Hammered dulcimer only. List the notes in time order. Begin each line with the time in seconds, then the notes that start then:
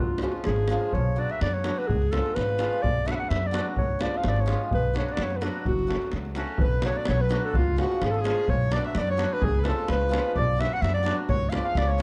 0.22 F3 G#3 C#4 F4
0.70 F3 G#3 C#4 F4
1.16 F#3 B3 D4 F#4
1.64 F#3 B3 D4 F#4
2.11 F3 G#3 C#4 F4
2.58 F3 G#3 C#4 F4
3.05 F#3 B3 D4 F#4
3.51 F#3 B3 D4 F#4
3.99 F3 G#3 C#4 F4
4.46 F3 G#3 C#4 F4
4.93 F#3 B3 D4 F#4
5.41 F#3 B3 D4 F#4
5.87 F#3 A3 C#4 F#4
6.35 F#3 A3 C#4 F#4
6.83 F#3 B3 D4 F#4
7.29 F#3 B3 D4 F#4
7.76 F3 G#3 C#4 F4
8.24 F3 G#3 C#4 F4
8.71 F#3 B3 D4 F#4
9.17 F#3 B3 D4 F#4
9.64 F3 G#3 C#4 F4
10.09 F3 G#3 C#4 F4
10.57 F#3 B3 D4 F#4
11.03 F#3 B3 D4 F#4
11.50 F3 G#3 C#4 F4
11.98 F3 G#3